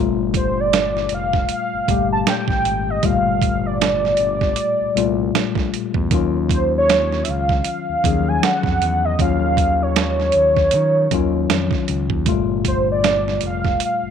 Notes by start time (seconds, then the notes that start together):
Already playing: G1 A#2 G3 A3
0.00 F4
0.34 C5, kick, closed hi-hat
0.60 D5
0.73 snare, closed hi-hat
0.97 snare
1.09 F1, closed hi-hat
1.14 F5
1.33 kick, snare
1.49 F5, closed hi-hat
1.74 G1
1.87 G1 A#2 G3 A3 G4, kick, closed hi-hat
2.13 A5
2.27 G5, snare, closed hi-hat
2.48 A1, kick, snare
2.65 G#1, closed hi-hat
2.90 D#5
3.02 G1 A2 G3 A3 F4 F5, kick, closed hi-hat
3.09 A#2
3.42 kick, closed hi-hat
3.66 D5
3.81 D5, snare, closed hi-hat
4.05 snare
4.17 G1, closed hi-hat
4.41 kick, snare
4.56 closed hi-hat
4.80 C2
4.95 C2 A#2 G3 A3 F4, closed hi-hat
5.35 A#1, snare, closed hi-hat
5.55 A#1, kick, snare
5.74 closed hi-hat
5.94 E2, kick
6.11 D#2 D#3 F#3 C#4 F4, kick, closed hi-hat
6.49 C5, kick, closed hi-hat
6.78 C#5
6.89 snare, closed hi-hat
7.12 snare
7.23 E5, closed hi-hat
7.28 C#2 F5
7.49 kick, snare
7.65 F5, closed hi-hat
7.89 D#2
8.04 D#2 D#3 F3 C#4 G#4, kick, closed hi-hat
8.11 F#3
8.28 G#5
8.43 F#5, snare, closed hi-hat
8.63 F2, kick, snare
8.82 E2, closed hi-hat
9.05 D#5
9.19 D#2 D#3 F#3 C#4 F4 F5, kick, closed hi-hat
9.57 kick, closed hi-hat
9.82 C#5
9.96 C#5, snare, closed hi-hat
10.20 snare
10.32 D#2, closed hi-hat
10.57 kick, snare
10.71 D#3, closed hi-hat
11.11 D#2 D#3 F#3 C#4 F4, kick, closed hi-hat
11.50 F2, snare, closed hi-hat
11.71 kick, snare
11.88 C#2, closed hi-hat
12.10 D#2, kick
12.26 G1 A#2 G3 A3 F4, kick, closed hi-hat
12.65 C5, kick, closed hi-hat
12.92 D5
13.04 snare, closed hi-hat
13.28 snare
13.41 F1, closed hi-hat
13.47 F5
13.65 kick, snare
13.80 closed hi-hat
13.85 F5
14.03 G1